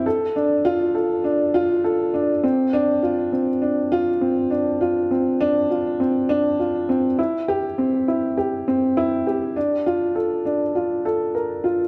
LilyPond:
\new Staff \with { instrumentName = "Grand piano" } { \time 4/4 \key d \minor \tempo 4 = 101 a'8 d'8 f'8 a'8 d'8 f'8 a'8 d'8 | c'8 d'8 f'8 c'8 d'8 f'8 c'8 d'8 | f'8 c'8 d'8 f'8 c'8 d'8 f'8 c'8 | e'8 g'8 c'8 e'8 g'8 c'8 e'8 g'8 |
d'8 f'8 a'8 d'8 f'8 a'8 bes'8 f'8 | }